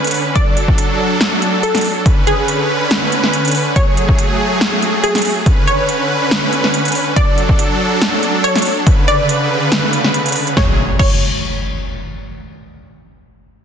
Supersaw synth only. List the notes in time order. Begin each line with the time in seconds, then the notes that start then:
Already playing: D3 C#4 B4
0.36 F#3 D4 A4
2.06 D3 C#4 B4
3.76 F#3 A3 G#4
5.46 D3 C#4 B4
7.16 F#3 D4 A4
8.87 C#3 D3 B4
10.57 F#3 A3 G#4